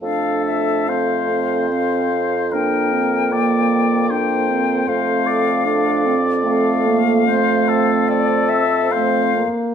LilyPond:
<<
  \new Staff \with { instrumentName = "Flute" } { \time 3/4 \key f \major \tempo 4 = 74 f''8 e''8 f''4 f''4 | g''2 g''4 | f''4. r8 f''4~ | f''4 d''8 e''8 f''8 r8 | }
  \new Staff \with { instrumentName = "Oboe" } { \time 3/4 \key f \major a'4 c''2 | bes'4 d''4 c''4 | c''8 d''8 d''4. r8 | c''8 a'8 a'4 c''8 r8 | }
  \new Staff \with { instrumentName = "Clarinet" } { \time 3/4 \key f \major d'4 c'8 c'4. | d'8 c'8 bes4 d'8 c'8 | c'4 d'8 c'8 c'8 bes8 | a4. r8 a8 r8 | }
  \new Staff \with { instrumentName = "French horn" } { \time 3/4 \key f \major a2 c'8 c'8 | bes2. | a4. r8 a4 | c'2 c'8 bes8 | }
  \new Staff \with { instrumentName = "Bassoon" } { \clef bass \time 3/4 \key f \major f,2.~ | f,2. | f,2.~ | f,2~ f,8 r8 | }
>>